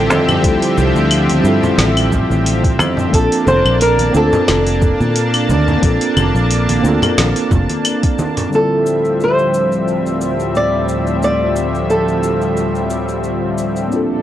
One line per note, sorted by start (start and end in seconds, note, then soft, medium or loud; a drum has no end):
0.00 0.10 A1 medium
0.00 3.09 D3 medium
0.00 3.09 F3 medium
0.00 0.38 G3 medium
0.00 0.39 C4 medium
0.00 3.10 C4 medium
0.00 0.40 E4 medium
0.00 0.41 F4 medium
0.00 3.09 G4 medium
0.00 0.11 A4 medium
0.00 0.42 A4 medium
0.00 3.09 E5 medium
0.10 0.37 F2 medium
0.10 2.77 G4 medium
0.10 high conga medium
0.10 cabasa medium
0.28 low conga medium
0.28 cabasa soft
0.28 claves medium
0.41 0.58 D2 medium
0.41 1.40 G3 medium
0.41 1.41 C4 medium
0.41 1.42 E4 medium
0.41 kick loud
0.41 open hi-hat medium
0.41 cabasa soft
0.46 1.42 F4 medium
0.46 1.43 A4 medium
0.62 open hi-hat soft
0.78 0.92 C2 medium
0.78 high conga medium
0.78 cabasa medium
0.95 1.39 D2 medium
0.95 cabasa soft
1.11 open hi-hat medium
1.11 cabasa soft
1.11 claves medium
1.29 open hi-hat soft
1.29 high conga medium
1.29 cabasa soft
1.41 1.59 G2 medium
1.41 3.08 G3 medium
1.41 3.09 C4 medium
1.41 3.10 E4 medium
1.41 cabasa medium
1.47 3.11 F4 medium
1.47 3.11 A4 medium
1.63 low conga medium
1.63 cabasa soft
1.78 2.24 A1 medium
1.78 snare medium
1.78 open hi-hat medium
1.78 high conga medium
1.78 cabasa soft
1.97 open hi-hat soft
1.97 cabasa soft
1.97 claves medium
2.12 kick medium
2.12 low conga medium
2.12 cabasa medium
2.30 2.79 A1 medium
2.30 high conga medium
2.30 cabasa soft
2.46 open hi-hat medium
2.46 cabasa soft
2.64 kick medium
2.64 open hi-hat soft
2.79 3.06 F2 medium
2.79 high conga medium
2.79 cabasa medium
2.79 claves medium
2.97 low conga medium
2.97 cabasa soft
3.10 3.28 A#1 medium
3.10 4.09 A#3 medium
3.10 8.48 A#3 medium
3.10 4.10 C4 medium
3.10 8.48 D4 medium
3.10 4.11 D4 medium
3.10 8.48 A5 medium
3.10 kick loud
3.10 open hi-hat medium
3.14 4.12 F4 medium
3.14 3.47 A4 medium
3.14 4.13 A4 medium
3.14 cabasa soft
3.32 open hi-hat soft
3.47 3.61 F1 medium
3.47 3.81 C5 loud
3.47 high conga medium
3.47 cabasa medium
3.65 4.09 A#1 medium
3.65 cabasa soft
3.65 claves medium
3.81 4.16 A#4 medium
3.81 open hi-hat medium
3.81 cabasa soft
3.99 open hi-hat soft
3.99 high conga medium
3.99 cabasa soft
4.11 4.29 D2 medium
4.11 5.77 A#3 medium
4.11 5.79 C4 medium
4.11 5.79 D4 medium
4.11 cabasa medium
4.16 5.80 F4 medium
4.16 7.82 A4 medium
4.16 5.81 A4 loud
4.33 low conga medium
4.33 cabasa soft
4.48 4.94 F1 medium
4.48 snare medium
4.48 open hi-hat medium
4.48 high conga medium
4.48 cabasa soft
4.48 claves medium
4.67 open hi-hat soft
4.67 cabasa soft
4.82 kick medium
4.82 low conga medium
4.82 cabasa medium
5.00 5.50 A#2 medium
5.00 high conga medium
5.00 cabasa soft
5.16 open hi-hat medium
5.16 cabasa soft
5.34 open hi-hat soft
5.34 claves medium
5.49 5.76 D2 medium
5.49 high conga medium
5.49 cabasa medium
5.68 low conga medium
5.68 cabasa soft
5.78 6.78 A#3 medium
5.78 6.79 C4 medium
5.78 6.80 D4 medium
5.83 5.97 A#1 medium
5.83 6.81 F4 medium
5.83 6.82 A4 medium
5.83 kick loud
5.83 open hi-hat medium
5.83 cabasa soft
6.01 open hi-hat soft
6.16 6.31 F1 medium
6.16 high conga medium
6.16 cabasa medium
6.16 claves medium
6.35 6.79 A#1 medium
6.35 cabasa soft
6.51 open hi-hat medium
6.51 cabasa soft
6.69 open hi-hat soft
6.69 high conga medium
6.69 cabasa soft
6.80 6.98 D2 medium
6.80 8.47 A#3 medium
6.80 8.48 C4 medium
6.80 8.49 D4 medium
6.85 8.50 F4 medium
6.85 8.51 A4 medium
6.85 cabasa medium
7.02 open hi-hat soft
7.02 low conga medium
7.02 cabasa soft
7.02 claves medium
7.18 7.32 A#1 medium
7.18 snare medium
7.18 open hi-hat medium
7.18 high conga medium
7.18 cabasa soft
7.36 open hi-hat soft
7.36 cabasa soft
7.51 7.66 F1 loud
7.51 kick medium
7.51 low conga medium
7.51 cabasa medium
7.70 open hi-hat soft
7.70 high conga medium
7.70 cabasa soft
7.85 open hi-hat medium
7.85 cabasa soft
7.85 claves medium
8.03 kick medium
8.03 open hi-hat soft
8.03 cabasa soft
8.19 high conga medium
8.19 cabasa medium
8.37 open hi-hat soft
8.37 low conga medium
8.37 cabasa soft
8.49 13.88 D2 medium
8.49 13.88 A2 medium
8.49 13.87 D3 medium
8.49 13.88 F3 medium
8.49 13.87 G3 medium
8.49 13.88 G3 medium
8.49 13.88 C4 medium
8.49 13.88 E5 medium
8.49 cabasa soft
8.54 13.89 E4 medium
8.54 13.89 F4 medium
8.54 9.23 A4 medium
8.54 13.90 A4 medium
8.86 cabasa medium
9.05 cabasa soft
9.20 10.17 C5 medium
9.20 cabasa soft
9.39 cabasa soft
9.54 cabasa medium
9.72 cabasa soft
9.88 cabasa soft
10.06 cabasa soft
10.17 10.56 A#4 medium
10.21 cabasa medium
10.40 cabasa soft
10.55 11.23 D5 medium
10.55 cabasa soft
10.89 cabasa medium
11.07 cabasa soft
11.23 11.90 D5 medium
11.23 cabasa soft
11.56 cabasa medium
11.75 cabasa soft
11.90 13.55 A4 medium
11.90 cabasa soft
12.08 cabasa soft
12.23 cabasa medium
12.41 cabasa soft
12.57 cabasa soft
12.75 cabasa soft
12.90 cabasa medium
13.08 cabasa soft
13.24 cabasa soft
13.58 cabasa medium
13.76 cabasa soft
13.88 14.22 A#3 medium
13.88 14.22 C4 medium
13.88 14.22 D4 medium
13.88 14.22 A4 medium
13.88 cabasa soft
13.92 14.22 A#2 medium
13.92 14.22 D4 medium
13.92 14.22 F4 medium
13.92 14.22 A4 medium